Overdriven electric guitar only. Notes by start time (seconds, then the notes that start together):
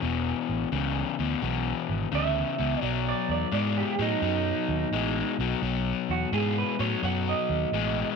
0.02 E2 B2
0.72 E2 C#3
1.19 E2 B2
1.42 E2 B2
2.12 E2 C#3
2.58 E2 B2
2.81 B2 F#3
3.52 B2 G#3
3.99 B2 F#3
4.22 B2 F#3
4.93 B2 G#3
5.40 B2 F#3
5.63 B2 F#3
6.33 B2 G#3
6.79 B2 F#3
7.03 B2 F#3
7.74 B2 G#3